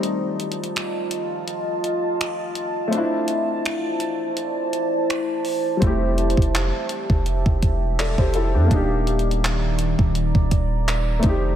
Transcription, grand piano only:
Already playing: G3 A3 C4 D#4
2.88 A3 C4
2.94 D4 E4
5.77 G3 C4
5.83 A3 E4 G4
7.99 A4 D5
8.19 G4 C5
8.35 E4 A4
8.54 D4 G4
8.66 A#3 D4
8.73 D#4 G4
11.19 A3 C4
11.26 D#4 G4

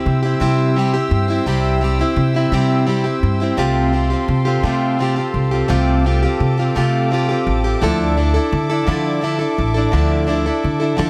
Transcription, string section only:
Already playing: C5 E5 G5 E6
3.57 A4 A5 C6
5.72 D6
7.83 E5

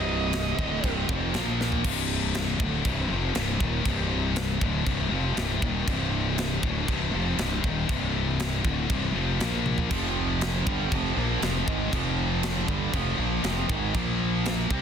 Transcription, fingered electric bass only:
Already playing: C1
0.58 D1
0.84 C1
1.09 F1
1.34 A#1
1.84 C1
2.60 D1
2.85 C1
3.10 F1
3.36 C1
3.61 D#1
3.85 C1
4.62 D1
4.87 C1
5.12 F1
5.37 C1
5.62 D#1
5.88 C1
6.63 D1
6.89 C1
7.14 F1
7.38 C1
7.64 D#1
7.89 C1
8.65 D1
8.90 C1
9.15 F1
9.40 A#1
9.91 F1
10.67 G1
10.92 F1
11.17 A#1
11.42 F1
11.68 G#1
11.93 F1
12.68 G1
12.94 F1
13.18 A#1
13.44 F1
13.69 G#1
13.95 A#1
14.70 C2

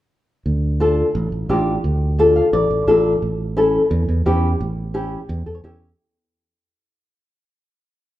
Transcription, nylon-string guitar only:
0.80 D4 F4 A4
1.49 D4 F4 G4
2.19 D4 F4 A4
2.36 F5
2.53 D5
2.87 D4 F4 A4
3.57 C#4 E4 A4
4.26 C#4 E4 G4
4.94 C#4 E4 G4
5.46 A4
5.55 C#5
5.64 C#4 E4 G4 E5

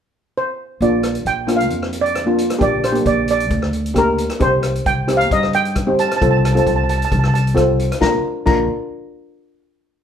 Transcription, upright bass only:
0.81 A#1
1.25 A#1
1.70 F2
2.61 A#1
3.06 A#1
3.51 D2
4.41 C2
4.86 C2
5.31 G2
6.22 C2
6.66 C2
7.12 C2
8.02 A#1
8.47 A#1

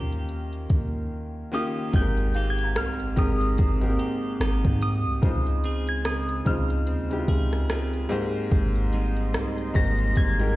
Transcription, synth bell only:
1.54 D#6
1.96 G6
2.50 G#6
2.77 F6
3.19 D#6
4.83 D#6
5.89 G#6
6.06 D#6
6.47 F6
9.76 A#6
10.17 G#6

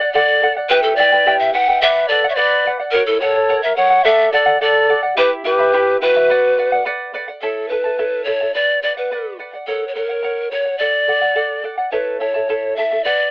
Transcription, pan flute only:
Already playing: D5
0.13 D5
0.70 B4
0.83 A4
0.96 D5
1.39 E5
1.53 F#5
1.81 E5
2.08 D5
2.29 E5
2.35 D5
2.91 A#4
3.06 A4
3.20 C#5
3.62 E5
3.76 F#5
4.04 E5
4.32 D5
4.62 D5
5.18 B4
5.45 B4
6.01 B4
7.41 A4
7.68 B4
8.24 C#5
8.54 D5
8.83 D5
8.97 B4
9.67 A4
9.88 C#5
9.95 A#4
10.51 C#5
10.78 D5
11.91 B4
12.20 C#5
12.76 E5
13.04 D5

